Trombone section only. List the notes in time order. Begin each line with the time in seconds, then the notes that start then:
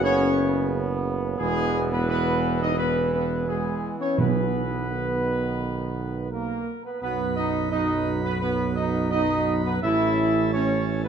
Already playing: C#3 B3
1.40 E3
4.19 B3
4.89 D#3
6.32 A#3
6.85 B3
7.02 B3
7.37 D#4
7.71 D#4
8.24 B3
8.42 B3
8.77 D#4
9.12 D#4
9.65 B3
9.84 E4
10.55 C#4
11.05 B3